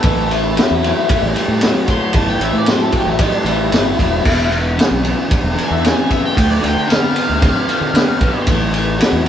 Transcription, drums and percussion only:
0.03 kick, ride
0.31 ride
0.57 snare, ride
0.84 ride
1.09 kick, ride
1.36 ride
1.61 snare, ride
1.88 kick, ride
2.13 kick, ride
2.41 ride
2.66 snare, ride
2.92 kick, ride
3.19 kick, ride
3.46 ride
3.72 snare, ride
3.99 kick, ride
4.25 kick, crash
4.52 ride
4.79 snare, ride
5.05 ride
5.31 kick, ride
5.58 ride
5.84 snare, ride
6.11 kick, ride
6.37 kick, ride
6.64 ride
6.90 snare, ride
7.16 ride
7.42 kick, ride
7.69 ride
7.95 snare, ride
8.21 kick, ride
8.47 kick, ride
8.74 ride
9.01 snare, ride

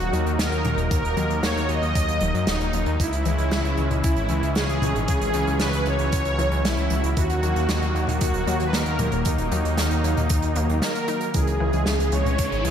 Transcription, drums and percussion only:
0.00 closed hi-hat
0.13 closed hi-hat
0.27 closed hi-hat
0.39 snare, closed hi-hat
0.52 closed hi-hat
0.65 closed hi-hat, mid tom
0.78 closed hi-hat
0.91 kick, closed hi-hat
1.05 closed hi-hat
1.17 closed hi-hat
1.30 closed hi-hat
1.43 snare, closed hi-hat
1.57 closed hi-hat
1.69 closed hi-hat
1.83 closed hi-hat
1.95 kick, closed hi-hat
2.08 closed hi-hat
2.21 closed hi-hat
2.35 closed hi-hat
2.47 snare, closed hi-hat
2.60 closed hi-hat
2.73 closed hi-hat
2.86 closed hi-hat
3.00 kick, closed hi-hat
3.13 closed hi-hat
3.25 closed hi-hat
3.38 closed hi-hat
3.51 snare, closed hi-hat
3.65 closed hi-hat
3.77 closed hi-hat
3.91 closed hi-hat, mid tom
4.04 kick, closed hi-hat
4.16 closed hi-hat
4.29 closed hi-hat
4.43 closed hi-hat
4.55 snare, closed hi-hat
4.69 closed hi-hat
4.82 closed hi-hat, mid tom
4.96 closed hi-hat
5.08 kick, closed hi-hat
5.21 closed hi-hat
5.34 closed hi-hat
5.47 closed hi-hat
5.59 snare, closed hi-hat
5.73 closed hi-hat
5.85 closed hi-hat
5.99 closed hi-hat
6.12 kick, closed hi-hat
6.25 closed hi-hat
6.39 closed hi-hat
6.52 closed hi-hat
6.65 snare, closed hi-hat
6.77 closed hi-hat
6.90 closed hi-hat
7.04 closed hi-hat
7.17 kick, closed hi-hat
7.30 closed hi-hat
7.43 closed hi-hat
7.56 closed hi-hat
7.69 snare, closed hi-hat
7.82 closed hi-hat
7.96 closed hi-hat
8.07 closed hi-hat, mid tom
8.21 kick, closed hi-hat
8.34 closed hi-hat
8.47 closed hi-hat
8.60 closed hi-hat
8.73 snare, closed hi-hat
8.86 closed hi-hat
8.99 closed hi-hat, mid tom
9.12 closed hi-hat
9.25 kick, closed hi-hat
9.38 closed hi-hat
9.52 closed hi-hat
9.65 closed hi-hat
9.77 snare, closed hi-hat
9.91 closed hi-hat
10.04 closed hi-hat
10.17 closed hi-hat, mid tom
10.29 kick, closed hi-hat
10.42 closed hi-hat
10.55 closed hi-hat
10.69 closed hi-hat
10.82 snare, closed hi-hat
10.95 closed hi-hat
11.08 closed hi-hat
11.21 closed hi-hat
11.34 kick, closed hi-hat
11.47 closed hi-hat
11.73 closed hi-hat
11.86 snare, closed hi-hat
12.00 closed hi-hat
12.12 closed hi-hat
12.25 closed hi-hat, mid tom
12.38 kick, closed hi-hat
12.52 closed hi-hat
12.65 closed hi-hat

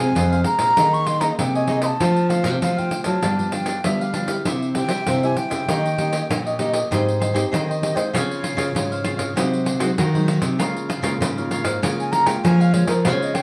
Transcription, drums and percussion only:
0.16 pandeiro
0.32 pandeiro
0.44 pandeiro
0.59 pandeiro
0.77 pandeiro
0.94 pandeiro
1.07 pandeiro
1.21 pandeiro
1.39 pandeiro
1.55 pandeiro
1.68 pandeiro
1.82 pandeiro
2.00 pandeiro
2.16 pandeiro
2.30 pandeiro
2.44 pandeiro
2.62 pandeiro
2.78 pandeiro
2.91 pandeiro
3.04 pandeiro
3.22 pandeiro
3.39 pandeiro
3.52 pandeiro
3.66 pandeiro
3.84 pandeiro
4.01 pandeiro
4.14 pandeiro
4.28 pandeiro
4.45 pandeiro
4.62 pandeiro
4.75 pandeiro
4.89 pandeiro
5.06 pandeiro
5.23 pandeiro
5.37 pandeiro
5.51 pandeiro
5.69 pandeiro
5.86 pandeiro
5.98 pandeiro
6.13 pandeiro
6.31 pandeiro
6.47 pandeiro
6.59 pandeiro
6.73 pandeiro
6.92 pandeiro
7.08 pandeiro
7.22 pandeiro
7.36 pandeiro
7.54 pandeiro
7.71 pandeiro
7.83 pandeiro
7.97 pandeiro
8.15 pandeiro
8.31 pandeiro
8.44 pandeiro
8.58 pandeiro
8.76 pandeiro
8.92 pandeiro
9.04 pandeiro
9.19 pandeiro
9.37 pandeiro
9.53 pandeiro
9.66 pandeiro
9.80 pandeiro
9.98 pandeiro
10.15 pandeiro
10.28 pandeiro
10.42 pandeiro
10.60 pandeiro
10.77 pandeiro
10.90 pandeiro
11.04 pandeiro
11.22 pandeiro
11.38 pandeiro
11.51 pandeiro
11.65 pandeiro
11.83 pandeiro
12.00 pandeiro
12.13 pandeiro
12.26 pandeiro
12.45 pandeiro
12.61 pandeiro
12.74 pandeiro
12.88 pandeiro
13.05 pandeiro
13.22 pandeiro
13.35 pandeiro

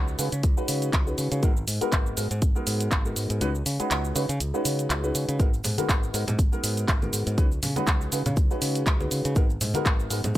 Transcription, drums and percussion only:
0.08 shaker
0.19 open hi-hat, shaker
0.32 closed hi-hat, shaker
0.43 kick, closed hi-hat, shaker
0.57 shaker
0.68 open hi-hat, shaker
0.82 closed hi-hat, shaker
0.93 kick, clap, closed hi-hat, shaker
1.07 shaker
1.18 open hi-hat, shaker
1.32 closed hi-hat, shaker
1.43 kick, closed hi-hat, shaker
1.57 shaker
1.68 open hi-hat, shaker
1.81 closed hi-hat, shaker
1.92 kick, clap, closed hi-hat, shaker
2.06 shaker
2.17 open hi-hat, shaker
2.31 closed hi-hat, shaker
2.42 kick, closed hi-hat, shaker
2.56 shaker
2.67 open hi-hat, shaker
2.80 closed hi-hat, shaker
2.91 kick, clap, closed hi-hat, shaker
3.05 shaker
3.16 open hi-hat, shaker
3.30 closed hi-hat, shaker
3.41 closed hi-hat, shaker
3.55 shaker
3.66 open hi-hat, shaker
3.80 closed hi-hat, shaker
3.91 clap, closed hi-hat, shaker
4.05 shaker
4.16 open hi-hat, shaker
4.29 closed hi-hat, shaker
4.40 closed hi-hat, shaker
4.54 shaker
4.65 open hi-hat, shaker
4.79 closed hi-hat, shaker
4.90 clap, closed hi-hat, shaker
5.04 shaker
5.15 open hi-hat, shaker
5.29 closed hi-hat, shaker
5.39 kick, closed hi-hat, maracas, shaker
5.54 shaker, maracas
5.64 open hi-hat, low conga, maracas, shaker
5.78 closed hi-hat, high conga, maracas, shaker
5.89 kick, clap, closed hi-hat, shaker, maracas
6.03 maracas, shaker
6.14 open hi-hat, maracas, shaker
6.27 closed hi-hat, low conga, maracas, shaker
6.38 kick, closed hi-hat, high conga, maracas, shaker
6.52 maracas, shaker
6.64 open hi-hat, maracas, shaker
6.77 closed hi-hat, shaker, maracas
6.88 kick, clap, closed hi-hat, shaker, maracas
7.02 high conga, shaker, maracas
7.13 open hi-hat, maracas, shaker
7.26 closed hi-hat, maracas, shaker
7.38 kick, closed hi-hat, shaker, maracas
7.52 shaker, maracas
7.63 open hi-hat, low conga, maracas, shaker
7.76 closed hi-hat, high conga, shaker, maracas
7.86 kick, clap, closed hi-hat, maracas, shaker
8.01 shaker, maracas
8.12 open hi-hat, shaker, maracas
8.26 closed hi-hat, low conga, maracas, shaker
8.36 kick, closed hi-hat, high conga, maracas, shaker
8.51 shaker, maracas
8.61 open hi-hat, maracas, shaker
8.75 closed hi-hat, shaker, maracas
8.86 kick, clap, closed hi-hat, maracas, shaker
9.00 high conga, shaker, maracas
9.11 open hi-hat, shaker, maracas
9.25 closed hi-hat, maracas, shaker
9.35 kick, closed hi-hat, maracas, shaker
9.50 maracas, shaker
9.61 open hi-hat, low conga, maracas, shaker
9.74 closed hi-hat, high conga, maracas, shaker
9.85 kick, clap, closed hi-hat, maracas, shaker
9.99 maracas, shaker
10.10 open hi-hat, shaker, maracas
10.24 closed hi-hat, low conga, maracas, shaker

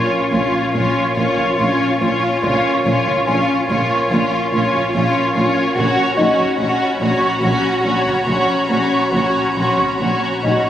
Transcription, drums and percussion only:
0.32 taiko
0.74 taiko
1.37 taiko
2.43 taiko
3.07 taiko
3.68 taiko
4.10 taiko
4.73 taiko
5.77 taiko
6.40 taiko
7.01 taiko
7.42 taiko
8.05 taiko
9.12 taiko
9.77 taiko
10.43 taiko

